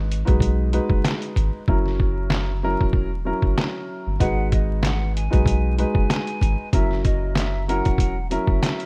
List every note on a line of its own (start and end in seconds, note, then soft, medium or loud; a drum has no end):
0.00 0.24 G#1 loud
0.00 0.17 G#3 medium
0.00 0.17 D#4 medium
0.00 0.18 F#4 medium
0.00 0.18 B4 loud
0.11 closed hi-hat medium
0.25 0.80 B1 medium
0.25 0.68 G#3 medium
0.25 0.69 D#4 medium
0.25 0.69 F#4 medium
0.25 0.69 B4 medium
0.25 kick loud
0.25 closed hi-hat soft
0.40 kick loud
0.40 closed hi-hat medium
0.73 1.61 G#3 medium
0.73 1.61 D#4 medium
0.73 1.61 F#4 medium
0.73 1.62 B4 loud
0.73 closed hi-hat medium
0.90 1.02 F#1 medium
0.90 kick loud
1.05 snare loud
1.05 clap loud
1.05 closed hi-hat loud
1.22 closed hi-hat soft
1.36 1.51 G#1 loud
1.36 kick medium
1.36 closed hi-hat medium
1.68 2.76 F#1 loud
1.68 2.56 F#3 medium
1.68 2.56 C#4 medium
1.68 2.56 E4 medium
1.68 2.56 A#4 medium
1.68 kick loud
1.86 snare soft
2.00 kick loud
2.30 snare loud
2.30 clap loud
2.63 3.08 F#3 medium
2.63 3.08 C#4 medium
2.63 3.08 E4 medium
2.63 3.08 A#4 loud
2.81 3.32 E1 medium
2.81 kick medium
2.93 kick loud
3.25 4.13 F#3 medium
3.25 4.14 C#4 medium
3.25 4.14 E4 medium
3.25 4.14 A#4 loud
3.42 3.54 F#1 medium
3.42 kick loud
3.58 snare loud
3.58 clap loud
4.07 4.18 G1 medium
4.20 5.29 G#1 loud
4.20 5.22 G#3 medium
4.20 5.23 D#4 medium
4.20 5.23 F#4 medium
4.20 5.23 B4 loud
4.20 4.48 F#5 loud
4.20 kick loud
4.20 closed hi-hat medium
4.52 4.80 D#5 medium
4.52 kick medium
4.52 closed hi-hat medium
4.83 5.12 F#5 medium
4.83 snare loud
4.83 clap loud
4.83 closed hi-hat medium
5.15 5.75 G#5 medium
5.15 closed hi-hat medium
5.30 5.85 B1 medium
5.30 5.74 G#3 medium
5.30 5.74 D#4 medium
5.30 5.74 F#4 medium
5.30 5.74 B4 medium
5.30 kick medium
5.30 closed hi-hat soft
5.46 kick loud
5.46 closed hi-hat medium
5.78 6.66 G#3 medium
5.78 6.66 D#4 medium
5.78 6.67 F#4 medium
5.78 6.67 B4 loud
5.78 6.69 G#5 medium
5.78 closed hi-hat medium
5.95 6.07 F#1 medium
5.95 kick loud
6.10 snare loud
6.10 clap loud
6.10 closed hi-hat loud
6.27 closed hi-hat soft
6.42 6.56 G#1 loud
6.42 kick medium
6.42 closed hi-hat medium
6.73 7.81 F#1 loud
6.73 7.61 F#3 medium
6.73 7.61 C#4 medium
6.73 7.61 E4 medium
6.73 7.62 A#4 medium
6.73 7.02 E5 medium
6.73 kick loud
6.73 closed hi-hat medium
6.91 snare soft
7.04 7.33 D#5 medium
7.04 kick loud
7.04 closed hi-hat medium
7.35 7.64 E5 medium
7.35 snare loud
7.35 clap loud
7.35 closed hi-hat medium
7.68 8.13 F#3 medium
7.68 8.13 C#4 medium
7.68 8.13 E4 medium
7.68 8.14 A#4 loud
7.68 8.27 F#5 medium
7.68 closed hi-hat medium
7.85 8.38 E1 medium
7.85 kick loud
7.85 closed hi-hat soft
7.98 kick loud
7.98 closed hi-hat medium
8.30 8.86 F#3 medium
8.30 8.86 C#4 medium
8.30 8.86 E4 medium
8.30 8.86 A#4 loud
8.30 8.86 E5 medium
8.30 closed hi-hat medium
8.47 8.59 F#1 medium
8.47 kick loud
8.63 snare loud
8.63 clap loud
8.63 closed hi-hat loud
8.80 closed hi-hat soft